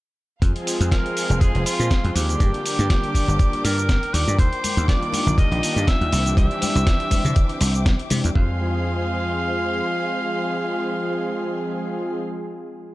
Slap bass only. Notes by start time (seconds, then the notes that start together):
0.42 F2
0.80 F2
1.30 F1
1.41 F2
1.55 F1
1.80 A#2
2.04 F2
2.16 D#2
2.40 G2
2.79 G2
3.28 G1
3.65 G2
4.14 D#2
4.28 G2
4.39 D#2
4.77 D#2
5.27 A#1
5.38 D#2
5.51 A#1
5.76 G2
6.01 D#2
6.12 C2
6.37 C2
6.75 C2
7.25 C3
7.61 C2
8.11 C3
8.25 E2
8.35 F2